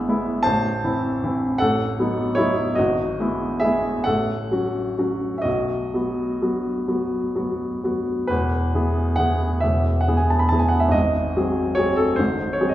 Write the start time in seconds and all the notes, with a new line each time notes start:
Already playing: G#1 G#3 B3 E4 E5 B5
0.09 G#3 B3 E4
0.43 A1 C5 A5
0.84 E3 C4 E4
1.24 E3 C4 E4
1.58 A1 A4 F#5
2.00 F#3 B3 D#4
2.35 F#3 B3 E4 C#5
2.39 D#4
2.75 G#1 F#4 D#5
3.20 G#3 B3 E4
3.60 G#3 B3 E4 G#4 E5
4.04 A1 A4 F#5
4.52 F#3 C#4 F#4
4.99 F#3 C#4 F#4
5.38 D#5 E5
5.43 B1 F#4
5.94 F#3 B3 F#4
6.42 F#3 B3 F#4
6.88 F#3 B3 F#4
7.36 F#3 B3 F#4
7.84 F#3 B3 F#4
8.27 E1 E2 B4
8.74 E3 B3 G#4
9.16 E3 B3 G#4 F#5
9.60 E1 E2 E5
10.01 F#5
10.08 E3 B3 G#4
10.17 G#5
10.30 A5
10.39 B5
10.49 E3 B3 A5
10.53 G#4
10.59 G#5
10.69 F#5
10.80 E5
10.88 G#1 D#5
10.94 G#2
11.37 F#3 C4 G#4
11.75 F#3 C4 C#5
11.79 G#4
11.96 A4
12.16 G#1 G#2 C5
12.53 C#5
12.61 F#3 C4 G#4
12.69 D#5